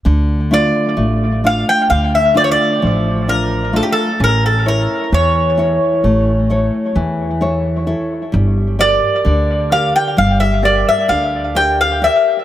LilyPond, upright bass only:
\new Staff \with { instrumentName = "Upright bass" } { \clef bass \time 9/8 \key d \minor \tempo 4. = 43 d,4 a,,4 d,4 a,,4. | a,,4 e,4 a,,4 e,4. | g,,4 d,4 g,,4 d,4. | }